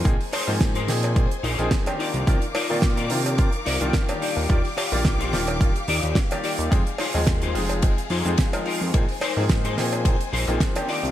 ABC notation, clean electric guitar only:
X:1
M:4/4
L:1/16
Q:"Swing 16ths" 1/4=108
K:Bbmix
V:1 name="Clean electric guitar"
z2 [EABc]2 z [EABc] z4 [EABc]2 z2 [EFBd]2- | [EFBd] z [EFBd]2 z [EFBd] z4 [EFBd]2 z2 [EFGd]2- | [EFGd] z [EFGf]2 z [EFGc] z4 [EFGd]2 z2 [EFGd]2 | z2 [EFAc]2 z [EFAc] z4 [EFAc]2 z2 [EFAB]2 |
z2 [EABc]2 z [EABc] z4 [EABc]2 z2 [EFBd]2 |]